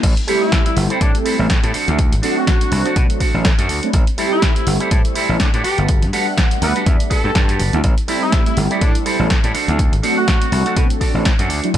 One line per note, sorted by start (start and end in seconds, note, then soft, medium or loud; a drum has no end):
0.03 0.13 A1 medium
0.03 kick loud
0.03 closed hi-hat medium
0.03 crash loud
0.17 closed hi-hat medium
0.27 0.63 G3 loud
0.27 0.63 A3 medium
0.27 0.63 C4 medium
0.27 0.41 E4 loud
0.27 0.63 E4 medium
0.27 0.41 G4 loud
0.27 0.63 G4 loud
0.27 0.42 A4 loud
0.27 0.42 C5 loud
0.27 open hi-hat loud
0.42 0.63 E4 medium
0.52 kick loud
0.52 snare loud
0.52 closed hi-hat medium
0.66 0.98 G3 medium
0.66 0.98 A3 medium
0.66 0.98 C4 medium
0.66 0.78 E4 medium
0.66 0.99 E4 medium
0.66 0.99 G4 medium
0.66 closed hi-hat medium
0.77 0.86 G1 loud
0.77 open hi-hat loud
0.90 1.08 E4 medium
0.90 1.08 G4 medium
0.90 1.08 A4 medium
0.90 1.08 C5 loud
0.90 closed hi-hat soft
1.01 1.11 A2 medium
1.01 1.36 G3 medium
1.01 1.36 A3 medium
1.01 1.36 C4 medium
1.01 1.16 D4 medium
1.01 1.36 E4 medium
1.01 1.36 A4 medium
1.01 kick loud
1.01 closed hi-hat medium
1.15 closed hi-hat medium
1.25 1.44 E4 loud
1.25 1.44 G4 loud
1.25 1.45 A4 loud
1.25 1.45 C5 loud
1.25 open hi-hat loud
1.39 1.47 A1 loud
1.39 1.52 G3 medium
1.39 1.52 A3 medium
1.39 1.52 C4 medium
1.39 1.52 E4 medium
1.39 1.52 A4 loud
1.50 1.59 A2 loud
1.50 kick loud
1.50 snare loud
1.50 closed hi-hat medium
1.63 1.71 A2 loud
1.63 1.74 E4 medium
1.63 1.74 G4 medium
1.63 1.73 A4 medium
1.63 1.73 C5 medium
1.63 closed hi-hat medium
1.74 2.14 D4 loud
1.74 2.14 F#4 medium
1.74 2.15 A4 medium
1.74 2.15 C5 medium
1.74 muted slap bass stroke soft
1.74 open hi-hat loud
1.88 2.14 D2 medium
1.88 2.00 F#3 medium
1.88 2.01 A3 medium
1.88 2.01 C4 medium
1.88 2.01 D4 medium
1.88 2.01 E4 medium
1.88 closed hi-hat soft
1.99 kick loud
1.99 closed hi-hat medium
2.12 2.20 A1 medium
2.12 closed hi-hat medium
2.22 2.58 F#3 loud
2.22 2.58 A3 medium
2.22 2.58 C4 medium
2.22 2.37 D4 loud
2.22 2.58 D4 medium
2.22 2.37 F#4 medium
2.22 2.58 F#4 loud
2.22 2.37 A4 loud
2.22 2.37 C5 loud
2.22 open hi-hat loud
2.37 3.04 F#4 loud
2.47 kick loud
2.47 snare loud
2.47 closed hi-hat medium
2.61 2.94 F#3 medium
2.61 2.94 A3 medium
2.61 2.94 C4 medium
2.61 2.94 D4 medium
2.61 2.94 F#4 medium
2.61 closed hi-hat medium
2.72 2.81 C2 loud
2.72 open hi-hat loud
2.85 3.03 D4 medium
2.85 3.03 F#4 medium
2.85 3.03 A4 medium
2.85 3.03 C5 medium
2.85 closed hi-hat soft
2.96 3.06 B2 medium
2.96 3.31 F#3 medium
2.96 3.31 A3 medium
2.96 3.31 C4 medium
2.96 3.31 D4 medium
2.96 3.31 A4 medium
2.96 kick loud
2.96 closed hi-hat medium
3.10 closed hi-hat medium
3.20 3.39 D4 loud
3.20 3.40 F#4 loud
3.20 3.40 A4 loud
3.20 3.40 C5 loud
3.20 kick medium
3.20 open hi-hat loud
3.34 3.50 A1 medium
3.34 3.47 F#3 medium
3.34 3.47 A3 medium
3.34 3.47 C4 medium
3.34 3.47 D4 medium
3.34 3.47 A4 loud
3.45 kick loud
3.45 snare loud
3.45 closed hi-hat medium
3.58 3.69 F#2 medium
3.58 3.88 D4 medium
3.58 3.88 F#4 medium
3.58 3.88 A4 medium
3.58 3.89 C5 medium
3.58 closed hi-hat medium
3.69 3.79 D2 medium
3.69 open hi-hat loud
3.83 3.92 F#3 medium
3.83 3.92 A3 medium
3.83 3.93 C4 medium
3.83 3.93 D4 medium
3.83 3.93 E4 medium
3.83 closed hi-hat soft
3.93 4.03 A1 loud
3.93 kick loud
3.93 closed hi-hat medium
4.07 closed hi-hat soft
4.18 4.53 G3 loud
4.18 4.53 A3 medium
4.18 4.53 C4 medium
4.18 4.32 E4 loud
4.18 4.53 E4 medium
4.18 4.32 G4 loud
4.18 4.53 G4 loud
4.18 4.32 A4 loud
4.18 4.32 C5 loud
4.18 open hi-hat loud
4.32 4.54 E4 loud
4.42 kick loud
4.42 snare loud
4.42 closed hi-hat medium
4.56 4.89 G3 medium
4.56 4.89 A3 medium
4.56 4.89 C4 medium
4.56 4.68 E4 medium
4.56 4.89 E4 medium
4.56 4.89 G4 medium
4.56 closed hi-hat medium
4.67 4.76 G1 loud
4.67 open hi-hat loud
4.80 4.98 E4 medium
4.80 4.98 G4 medium
4.80 4.98 A4 medium
4.80 4.98 C5 medium
4.80 closed hi-hat soft
4.91 5.01 A2 loud
4.91 5.26 G3 medium
4.91 5.26 A3 medium
4.91 5.26 C4 medium
4.91 5.26 E4 medium
4.91 5.26 A4 medium
4.91 kick loud
4.91 closed hi-hat medium
5.05 closed hi-hat soft
5.15 5.34 E4 loud
5.15 5.35 G4 loud
5.15 5.35 A4 loud
5.15 5.35 C5 loud
5.15 open hi-hat loud
5.29 5.37 A1 loud
5.29 5.42 G3 medium
5.29 5.42 A3 medium
5.29 5.42 C4 medium
5.29 5.42 E4 medium
5.29 5.42 A4 loud
5.40 5.49 D4 medium
5.40 kick loud
5.40 snare loud
5.40 closed hi-hat medium
5.53 5.61 A2 loud
5.53 5.61 D4 medium
5.53 5.64 E4 medium
5.53 5.63 G4 medium
5.53 5.63 A4 medium
5.53 5.64 C5 medium
5.53 closed hi-hat medium
5.64 6.05 F#4 loud
5.64 5.79 G4 loud
5.64 6.05 G4 medium
5.64 6.05 A4 medium
5.64 6.05 B4 loud
5.64 muted slap bass stroke soft
5.64 open hi-hat loud
5.78 6.04 G1 medium
5.78 5.91 G3 medium
5.78 5.91 A3 medium
5.78 5.91 B3 medium
5.78 5.91 D4 medium
5.78 5.91 E4 medium
5.78 closed hi-hat soft
5.89 kick loud
5.89 closed hi-hat medium
6.02 6.10 G2 medium
6.02 closed hi-hat soft
6.13 6.48 G3 loud
6.13 6.48 A3 medium
6.13 6.48 B3 medium
6.13 6.48 D4 medium
6.13 6.27 F#4 loud
6.13 6.27 G4 loud
6.13 6.27 A4 loud
6.13 6.27 B4 loud
6.13 6.48 F#5 loud
6.13 snare soft
6.13 open hi-hat loud
6.38 kick loud
6.38 snare loud
6.38 closed hi-hat medium
6.51 6.84 G3 medium
6.51 6.84 A3 medium
6.51 6.84 B3 medium
6.51 6.84 D4 medium
6.51 6.84 F#5 medium
6.51 closed hi-hat soft
6.62 6.71 D2 loud
6.62 6.77 B4 medium
6.62 6.85 F#5 medium
6.62 open hi-hat loud
6.76 6.93 F#4 medium
6.76 6.93 G4 medium
6.76 6.93 A4 medium
6.76 6.94 B4 loud
6.76 closed hi-hat soft
6.86 6.96 E2 medium
6.86 7.21 G3 medium
6.86 7.21 A3 medium
6.86 7.21 B3 medium
6.86 7.21 D4 medium
6.86 7.32 E5 medium
6.86 kick loud
6.86 closed hi-hat medium
7.00 closed hi-hat medium
7.10 7.30 F#4 loud
7.10 7.30 G4 loud
7.10 7.49 A4 medium
7.10 7.30 A4 loud
7.10 7.30 B4 loud
7.10 kick medium
7.10 open hi-hat loud
7.24 7.35 G2 medium
7.24 7.37 G3 medium
7.24 7.37 A3 medium
7.24 7.37 B3 medium
7.24 7.37 D4 medium
7.24 7.37 G4 loud
7.35 7.61 G2 medium
7.35 7.81 D5 medium
7.35 kick loud
7.35 snare loud
7.35 closed hi-hat medium
7.48 7.78 F#4 medium
7.48 7.78 G4 medium
7.48 7.79 A4 medium
7.48 7.79 B4 loud
7.48 closed hi-hat medium
7.59 7.69 G1 medium
7.59 open hi-hat loud
7.73 7.81 D2 medium
7.73 7.82 G3 medium
7.73 7.83 A3 medium
7.73 7.83 B3 medium
7.73 7.83 D4 medium
7.73 7.83 E4 medium
7.73 closed hi-hat soft
7.84 7.94 A1 loud
7.84 kick loud
7.84 closed hi-hat medium
7.98 closed hi-hat soft
8.08 8.43 G3 loud
8.08 8.43 A3 medium
8.08 8.43 C4 medium
8.08 8.22 E4 loud
8.08 8.43 E4 medium
8.08 8.22 G4 loud
8.08 8.43 G4 loud
8.08 8.22 A4 loud
8.08 8.22 C5 loud
8.08 open hi-hat loud
8.22 8.44 E4 medium
8.32 kick loud
8.32 snare loud
8.32 closed hi-hat medium
8.46 8.79 G3 medium
8.46 8.79 A3 medium
8.46 8.79 C4 medium
8.46 8.58 E4 medium
8.46 8.79 E4 medium
8.46 8.79 G4 medium
8.46 closed hi-hat medium
8.57 8.67 G1 loud
8.57 open hi-hat loud
8.71 8.88 E4 medium
8.71 8.88 G4 medium
8.71 8.88 A4 medium
8.71 8.89 D5 loud
8.71 closed hi-hat soft
8.81 8.91 A2 loud
8.81 9.16 G3 medium
8.81 9.16 A3 medium
8.81 9.16 C4 medium
8.81 8.96 D4 medium
8.81 9.16 E4 medium
8.81 9.17 A4 loud
8.81 kick loud
8.81 closed hi-hat medium
8.95 closed hi-hat medium
9.06 9.25 E4 loud
9.06 9.25 G4 loud
9.06 9.25 A4 loud
9.06 9.25 C5 loud
9.06 open hi-hat loud
9.19 9.27 A1 loud
9.19 9.32 G3 medium
9.19 9.32 A3 medium
9.19 9.32 C4 medium
9.19 9.32 E4 medium
9.19 9.33 A4 loud
9.30 kick loud
9.30 snare loud
9.30 closed hi-hat medium
9.44 9.51 A2 loud
9.44 9.54 E4 medium
9.44 9.54 G4 medium
9.44 9.54 A4 medium
9.44 9.55 D5 medium
9.44 closed hi-hat medium
9.54 9.95 D4 loud
9.54 9.95 F#4 medium
9.54 9.95 A4 medium
9.54 9.95 C5 loud
9.54 muted slap bass stroke soft
9.54 open hi-hat loud
9.68 9.94 D2 medium
9.68 9.81 F#3 medium
9.68 9.81 A3 medium
9.68 9.81 C4 medium
9.68 9.81 D4 medium
9.68 9.81 E4 medium
9.68 closed hi-hat soft
9.79 kick loud
9.79 closed hi-hat medium
9.93 10.00 A1 medium
9.93 closed hi-hat medium
10.03 10.38 F#3 loud
10.03 10.38 A3 medium
10.03 10.38 C4 medium
10.03 10.17 D4 loud
10.03 10.38 D4 medium
10.03 10.17 F#4 medium
10.03 10.38 F#4 loud
10.03 10.17 A4 loud
10.03 10.17 C5 loud
10.03 open hi-hat loud
10.17 10.85 F#4 loud
10.28 kick loud
10.28 snare loud
10.28 closed hi-hat medium
10.41 10.74 F#3 medium
10.41 10.74 A3 medium
10.41 10.74 C4 medium
10.41 10.74 D4 medium
10.41 10.74 F#4 medium
10.41 closed hi-hat medium
10.52 10.62 C2 loud
10.52 open hi-hat loud
10.66 10.83 D4 medium
10.66 10.83 F#4 medium
10.66 10.84 A4 medium
10.66 10.84 C5 medium
10.66 closed hi-hat soft
10.76 10.86 B2 medium
10.76 11.11 F#3 medium
10.76 11.11 A3 medium
10.76 11.11 C4 medium
10.76 11.12 D4 medium
10.76 11.12 A4 medium
10.76 kick loud
10.76 closed hi-hat medium
10.90 closed hi-hat medium
11.01 11.20 D4 loud
11.01 11.20 F#4 medium
11.01 11.20 A4 loud
11.01 11.20 D5 loud
11.01 kick medium
11.01 open hi-hat loud
11.14 11.31 A1 medium
11.14 11.27 F#3 medium
11.14 11.27 A3 medium
11.14 11.27 C4 medium
11.14 11.28 D4 medium
11.14 11.28 A4 medium
11.25 kick loud
11.25 snare loud
11.25 closed hi-hat medium
11.39 11.50 F#2 medium
11.39 11.69 D4 loud
11.39 11.69 F#4 medium
11.39 11.69 A4 medium
11.39 11.69 C5 loud
11.39 closed hi-hat medium
11.50 11.59 D2 medium
11.50 open hi-hat loud
11.63 11.73 F#3 medium
11.63 11.73 A3 medium
11.63 11.73 C4 medium
11.63 11.73 D4 medium
11.63 11.73 E4 medium
11.63 closed hi-hat soft
11.74 11.78 A1 loud
11.74 kick loud
11.74 closed hi-hat medium